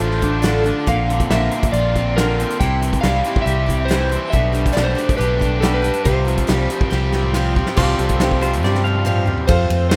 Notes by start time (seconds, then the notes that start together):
Already playing: A2 D3 A3 D4 F4 C5
0.00 A1 D4 F4 A4
0.11 snare
0.19 A3 D4 F4 A4, kick, closed hi-hat
0.42 A2 D3 A3 D4 F4 A4 D5, snare, closed hi-hat
0.64 A3 D4 F4 A4, closed hi-hat
0.86 A#1 A#2 D3 F3 A#3 C4 F4 F5, kick, closed hi-hat
1.08 D3 F3 A#3 C4 F4, closed hi-hat
1.20 kick, closed hi-hat
1.30 A#1 A#2 D3 F3 A#3 C4 F4 E5, snare, closed hi-hat
1.51 A#3 C4 F4, closed hi-hat
1.57 F3
1.63 kick, closed hi-hat
1.72 A#1 F3 F4 D5, closed hi-hat
1.76 A#3 C4 F4
1.94 C4 F4, kick, closed hi-hat
1.98 F3 A#3 C4
2.16 A#2 D3 F3 A#3 C4 F4 A#4, snare, closed hi-hat
2.39 F3 A#3 C4 F4, closed hi-hat
2.50 closed hi-hat
2.60 C2 C3 G3 C4 E4 G4 G5, kick, closed hi-hat
2.81 E3 C4 E4 G4, closed hi-hat
2.93 kick, closed hi-hat
3.01 C2 C3 F5, snare, closed hi-hat
3.05 G3 C4 E4 G4
3.24 E4 G4, closed hi-hat
3.29 C4
3.36 kick
3.42 C2 G3 E5
3.47 C4 E4 G4, closed hi-hat
3.66 E4 G4, kick, closed hi-hat
3.70 C4
3.85 C3 G3 C5
3.90 E3 C4 E4 G4, snare, closed hi-hat
4.09 C4 E4 G4, closed hi-hat
4.30 B2 G3 E5, kick, closed hi-hat
4.34 B1 A3 D4 G4
4.52 G3 A3 D4 G4, closed hi-hat
4.66 kick, closed hi-hat
4.72 B2 G3 A3 D4 G4 D5
4.77 B1, snare, closed hi-hat
4.84 C5
4.95 A3 D4 G4, closed hi-hat
5.09 kick, closed hi-hat
5.17 B1 G3 A3 D4 G4 B4, closed hi-hat
5.39 A3 D4 G4, kick, closed hi-hat
5.61 B2 G3 A3 D4 G4 A4, snare, closed hi-hat
5.74 B4
5.82 A3 D4 G4, closed hi-hat
5.94 closed hi-hat
6.04 C2 C3 F3 C4 F4 G4 C5, kick, closed hi-hat
6.25 F3 C4 F4 G4, closed hi-hat
6.37 kick, closed hi-hat
6.47 C2 C3 F3 G3 C4 F4 G4, snare, closed hi-hat
6.70 C4 F4 G4, closed hi-hat
6.81 kick
6.89 C2 F3 C4 F4 G4 A#4, snare
7.12 C4 F4 G4, snare
7.23 mid tom
7.33 C3 F3 C4 F4 G4, snare
7.56 C4 F4 G4, kick
7.66 snare
7.75 C2 C3 G3 C4 F4 G4 C5 F5, kick, crash
7.80 F3 C4 F4 G4
7.99 C2 C4 F4 G4 A4, closed hi-hat
8.09 kick, closed hi-hat
8.20 C3 F3 C4 F4 G4, snare, closed hi-hat
8.31 kick
8.41 C4 F4 G4 C5, snare, closed hi-hat
8.53 closed hi-hat
8.63 G2 F3 C4 F4 G4 D5, snare
8.75 snare
8.84 C4 F4 G4 F5
8.95 high tom
9.05 C3 F3 C4 F4 G4 F5, mid tom
9.26 C4 F4 G4, floor tom
9.37 floor tom
9.45 F2 C3 F3 A3 C4 F4 C5, kick, ride
9.49 F2 A3 C4 A4 C5 F5
9.70 F2 F3 A3 C4 A4, ride
9.90 F3 A3 C5, snare, ride